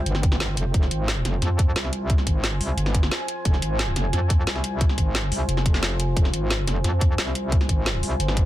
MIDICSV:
0, 0, Header, 1, 4, 480
1, 0, Start_track
1, 0, Key_signature, -4, "minor"
1, 0, Tempo, 338983
1, 1049, Time_signature, 4, 2, 24, 8
1, 11971, End_track
2, 0, Start_track
2, 0, Title_t, "Ambient pad"
2, 0, Program_c, 0, 92
2, 0, Note_on_c, 0, 65, 82
2, 0, Note_on_c, 0, 72, 73
2, 0, Note_on_c, 0, 79, 88
2, 1018, Note_off_c, 0, 79, 0
2, 1049, Note_on_c, 0, 80, 90
2, 8697, Note_off_c, 0, 80, 0
2, 8729, Note_on_c, 0, 80, 91
2, 11971, Note_off_c, 0, 65, 0
2, 11971, Note_off_c, 0, 72, 0
2, 11971, Note_off_c, 0, 80, 0
2, 11971, End_track
3, 0, Start_track
3, 0, Title_t, "Wobble bass"
3, 0, Program_c, 1, 39
3, 89, Note_on_c, 1, 31, 99
3, 790, Note_off_c, 1, 31, 0
3, 810, Note_on_c, 1, 29, 100
3, 1031, Note_off_c, 1, 29, 0
3, 1050, Note_on_c, 1, 29, 97
3, 1271, Note_off_c, 1, 29, 0
3, 1290, Note_on_c, 1, 32, 101
3, 1750, Note_off_c, 1, 32, 0
3, 1770, Note_on_c, 1, 29, 98
3, 1991, Note_off_c, 1, 29, 0
3, 2010, Note_on_c, 1, 41, 101
3, 2471, Note_off_c, 1, 41, 0
3, 2490, Note_on_c, 1, 36, 101
3, 3191, Note_off_c, 1, 36, 0
3, 3210, Note_on_c, 1, 32, 102
3, 3671, Note_off_c, 1, 32, 0
3, 3688, Note_on_c, 1, 36, 100
3, 3910, Note_off_c, 1, 36, 0
3, 3929, Note_on_c, 1, 31, 101
3, 4390, Note_off_c, 1, 31, 0
3, 4889, Note_on_c, 1, 29, 99
3, 5110, Note_off_c, 1, 29, 0
3, 5129, Note_on_c, 1, 32, 103
3, 5590, Note_off_c, 1, 32, 0
3, 5608, Note_on_c, 1, 29, 99
3, 5830, Note_off_c, 1, 29, 0
3, 5849, Note_on_c, 1, 41, 97
3, 6310, Note_off_c, 1, 41, 0
3, 6329, Note_on_c, 1, 36, 99
3, 7030, Note_off_c, 1, 36, 0
3, 7049, Note_on_c, 1, 32, 98
3, 7510, Note_off_c, 1, 32, 0
3, 7529, Note_on_c, 1, 36, 100
3, 7750, Note_off_c, 1, 36, 0
3, 7770, Note_on_c, 1, 29, 103
3, 8711, Note_off_c, 1, 29, 0
3, 8729, Note_on_c, 1, 29, 97
3, 8951, Note_off_c, 1, 29, 0
3, 8969, Note_on_c, 1, 32, 100
3, 9430, Note_off_c, 1, 32, 0
3, 9450, Note_on_c, 1, 29, 99
3, 9671, Note_off_c, 1, 29, 0
3, 9688, Note_on_c, 1, 41, 100
3, 10150, Note_off_c, 1, 41, 0
3, 10169, Note_on_c, 1, 36, 99
3, 10870, Note_off_c, 1, 36, 0
3, 10890, Note_on_c, 1, 32, 98
3, 11351, Note_off_c, 1, 32, 0
3, 11370, Note_on_c, 1, 36, 98
3, 11591, Note_off_c, 1, 36, 0
3, 11611, Note_on_c, 1, 31, 99
3, 11971, Note_off_c, 1, 31, 0
3, 11971, End_track
4, 0, Start_track
4, 0, Title_t, "Drums"
4, 89, Note_on_c, 9, 42, 75
4, 209, Note_on_c, 9, 40, 49
4, 231, Note_off_c, 9, 42, 0
4, 330, Note_on_c, 9, 36, 118
4, 330, Note_on_c, 9, 42, 86
4, 351, Note_off_c, 9, 40, 0
4, 450, Note_on_c, 9, 40, 55
4, 471, Note_off_c, 9, 42, 0
4, 472, Note_off_c, 9, 36, 0
4, 569, Note_on_c, 9, 38, 127
4, 569, Note_on_c, 9, 42, 78
4, 591, Note_off_c, 9, 40, 0
4, 711, Note_off_c, 9, 38, 0
4, 711, Note_off_c, 9, 42, 0
4, 810, Note_on_c, 9, 42, 88
4, 951, Note_off_c, 9, 42, 0
4, 1050, Note_on_c, 9, 42, 76
4, 1051, Note_on_c, 9, 36, 122
4, 1171, Note_on_c, 9, 40, 34
4, 1192, Note_off_c, 9, 36, 0
4, 1192, Note_off_c, 9, 42, 0
4, 1291, Note_on_c, 9, 42, 90
4, 1313, Note_off_c, 9, 40, 0
4, 1432, Note_off_c, 9, 42, 0
4, 1532, Note_on_c, 9, 38, 126
4, 1532, Note_on_c, 9, 42, 80
4, 1673, Note_off_c, 9, 38, 0
4, 1673, Note_off_c, 9, 42, 0
4, 1771, Note_on_c, 9, 40, 48
4, 1771, Note_on_c, 9, 42, 93
4, 1913, Note_off_c, 9, 40, 0
4, 1913, Note_off_c, 9, 42, 0
4, 2011, Note_on_c, 9, 40, 34
4, 2011, Note_on_c, 9, 42, 76
4, 2153, Note_off_c, 9, 40, 0
4, 2153, Note_off_c, 9, 42, 0
4, 2250, Note_on_c, 9, 36, 112
4, 2252, Note_on_c, 9, 42, 91
4, 2392, Note_off_c, 9, 36, 0
4, 2393, Note_off_c, 9, 42, 0
4, 2491, Note_on_c, 9, 38, 123
4, 2491, Note_on_c, 9, 42, 78
4, 2611, Note_on_c, 9, 40, 31
4, 2632, Note_off_c, 9, 38, 0
4, 2632, Note_off_c, 9, 42, 0
4, 2730, Note_on_c, 9, 42, 90
4, 2752, Note_off_c, 9, 40, 0
4, 2872, Note_off_c, 9, 42, 0
4, 2970, Note_on_c, 9, 36, 117
4, 2970, Note_on_c, 9, 42, 79
4, 3090, Note_on_c, 9, 40, 35
4, 3112, Note_off_c, 9, 36, 0
4, 3112, Note_off_c, 9, 42, 0
4, 3210, Note_on_c, 9, 36, 61
4, 3211, Note_on_c, 9, 42, 92
4, 3231, Note_off_c, 9, 40, 0
4, 3352, Note_off_c, 9, 36, 0
4, 3353, Note_off_c, 9, 42, 0
4, 3450, Note_on_c, 9, 38, 117
4, 3450, Note_on_c, 9, 42, 84
4, 3592, Note_off_c, 9, 38, 0
4, 3592, Note_off_c, 9, 42, 0
4, 3691, Note_on_c, 9, 46, 88
4, 3833, Note_off_c, 9, 46, 0
4, 3931, Note_on_c, 9, 42, 80
4, 4051, Note_on_c, 9, 40, 46
4, 4072, Note_off_c, 9, 42, 0
4, 4170, Note_on_c, 9, 36, 108
4, 4171, Note_on_c, 9, 42, 94
4, 4193, Note_off_c, 9, 40, 0
4, 4291, Note_on_c, 9, 40, 53
4, 4311, Note_off_c, 9, 36, 0
4, 4312, Note_off_c, 9, 42, 0
4, 4410, Note_on_c, 9, 38, 122
4, 4410, Note_on_c, 9, 42, 80
4, 4432, Note_off_c, 9, 40, 0
4, 4552, Note_off_c, 9, 38, 0
4, 4552, Note_off_c, 9, 42, 0
4, 4650, Note_on_c, 9, 42, 92
4, 4792, Note_off_c, 9, 42, 0
4, 4889, Note_on_c, 9, 36, 114
4, 4889, Note_on_c, 9, 42, 85
4, 5010, Note_on_c, 9, 40, 35
4, 5031, Note_off_c, 9, 36, 0
4, 5031, Note_off_c, 9, 42, 0
4, 5130, Note_on_c, 9, 42, 95
4, 5151, Note_off_c, 9, 40, 0
4, 5272, Note_off_c, 9, 42, 0
4, 5370, Note_on_c, 9, 38, 117
4, 5370, Note_on_c, 9, 42, 84
4, 5511, Note_off_c, 9, 38, 0
4, 5511, Note_off_c, 9, 42, 0
4, 5609, Note_on_c, 9, 40, 50
4, 5609, Note_on_c, 9, 42, 99
4, 5751, Note_off_c, 9, 40, 0
4, 5751, Note_off_c, 9, 42, 0
4, 5850, Note_on_c, 9, 40, 35
4, 5850, Note_on_c, 9, 42, 83
4, 5992, Note_off_c, 9, 40, 0
4, 5992, Note_off_c, 9, 42, 0
4, 6090, Note_on_c, 9, 36, 106
4, 6090, Note_on_c, 9, 42, 96
4, 6231, Note_off_c, 9, 36, 0
4, 6232, Note_off_c, 9, 42, 0
4, 6331, Note_on_c, 9, 38, 119
4, 6331, Note_on_c, 9, 42, 83
4, 6450, Note_on_c, 9, 40, 34
4, 6472, Note_off_c, 9, 38, 0
4, 6472, Note_off_c, 9, 42, 0
4, 6569, Note_on_c, 9, 42, 96
4, 6591, Note_off_c, 9, 40, 0
4, 6710, Note_off_c, 9, 42, 0
4, 6809, Note_on_c, 9, 42, 83
4, 6810, Note_on_c, 9, 36, 118
4, 6930, Note_on_c, 9, 40, 36
4, 6951, Note_off_c, 9, 36, 0
4, 6951, Note_off_c, 9, 42, 0
4, 7050, Note_on_c, 9, 36, 60
4, 7050, Note_on_c, 9, 42, 96
4, 7072, Note_off_c, 9, 40, 0
4, 7191, Note_off_c, 9, 36, 0
4, 7192, Note_off_c, 9, 42, 0
4, 7290, Note_on_c, 9, 38, 119
4, 7290, Note_on_c, 9, 42, 87
4, 7431, Note_off_c, 9, 38, 0
4, 7431, Note_off_c, 9, 42, 0
4, 7530, Note_on_c, 9, 46, 85
4, 7671, Note_off_c, 9, 46, 0
4, 7770, Note_on_c, 9, 42, 84
4, 7891, Note_on_c, 9, 40, 51
4, 7912, Note_off_c, 9, 42, 0
4, 8010, Note_on_c, 9, 36, 110
4, 8011, Note_on_c, 9, 42, 96
4, 8032, Note_off_c, 9, 40, 0
4, 8131, Note_on_c, 9, 38, 36
4, 8131, Note_on_c, 9, 40, 58
4, 8151, Note_off_c, 9, 36, 0
4, 8152, Note_off_c, 9, 42, 0
4, 8251, Note_off_c, 9, 38, 0
4, 8251, Note_on_c, 9, 38, 120
4, 8251, Note_on_c, 9, 42, 86
4, 8272, Note_off_c, 9, 40, 0
4, 8392, Note_off_c, 9, 38, 0
4, 8392, Note_off_c, 9, 42, 0
4, 8490, Note_on_c, 9, 42, 100
4, 8632, Note_off_c, 9, 42, 0
4, 8730, Note_on_c, 9, 36, 121
4, 8731, Note_on_c, 9, 42, 85
4, 8851, Note_on_c, 9, 40, 36
4, 8872, Note_off_c, 9, 36, 0
4, 8873, Note_off_c, 9, 42, 0
4, 8971, Note_on_c, 9, 42, 99
4, 8993, Note_off_c, 9, 40, 0
4, 9112, Note_off_c, 9, 42, 0
4, 9211, Note_on_c, 9, 38, 124
4, 9211, Note_on_c, 9, 42, 88
4, 9352, Note_off_c, 9, 38, 0
4, 9352, Note_off_c, 9, 42, 0
4, 9452, Note_on_c, 9, 40, 54
4, 9452, Note_on_c, 9, 42, 101
4, 9593, Note_off_c, 9, 40, 0
4, 9593, Note_off_c, 9, 42, 0
4, 9691, Note_on_c, 9, 40, 38
4, 9691, Note_on_c, 9, 42, 83
4, 9833, Note_off_c, 9, 40, 0
4, 9833, Note_off_c, 9, 42, 0
4, 9930, Note_on_c, 9, 36, 113
4, 9931, Note_on_c, 9, 42, 97
4, 10072, Note_off_c, 9, 36, 0
4, 10073, Note_off_c, 9, 42, 0
4, 10171, Note_on_c, 9, 38, 119
4, 10171, Note_on_c, 9, 42, 86
4, 10292, Note_on_c, 9, 40, 35
4, 10313, Note_off_c, 9, 38, 0
4, 10313, Note_off_c, 9, 42, 0
4, 10411, Note_on_c, 9, 42, 100
4, 10433, Note_off_c, 9, 40, 0
4, 10553, Note_off_c, 9, 42, 0
4, 10650, Note_on_c, 9, 36, 127
4, 10651, Note_on_c, 9, 42, 81
4, 10772, Note_on_c, 9, 40, 38
4, 10792, Note_off_c, 9, 36, 0
4, 10793, Note_off_c, 9, 42, 0
4, 10890, Note_on_c, 9, 36, 63
4, 10891, Note_on_c, 9, 42, 95
4, 10914, Note_off_c, 9, 40, 0
4, 11032, Note_off_c, 9, 36, 0
4, 11033, Note_off_c, 9, 42, 0
4, 11131, Note_on_c, 9, 38, 127
4, 11131, Note_on_c, 9, 42, 84
4, 11273, Note_off_c, 9, 38, 0
4, 11273, Note_off_c, 9, 42, 0
4, 11371, Note_on_c, 9, 46, 80
4, 11513, Note_off_c, 9, 46, 0
4, 11610, Note_on_c, 9, 42, 81
4, 11730, Note_on_c, 9, 40, 52
4, 11752, Note_off_c, 9, 42, 0
4, 11850, Note_on_c, 9, 36, 111
4, 11850, Note_on_c, 9, 42, 93
4, 11872, Note_off_c, 9, 40, 0
4, 11971, Note_off_c, 9, 36, 0
4, 11971, Note_off_c, 9, 42, 0
4, 11971, End_track
0, 0, End_of_file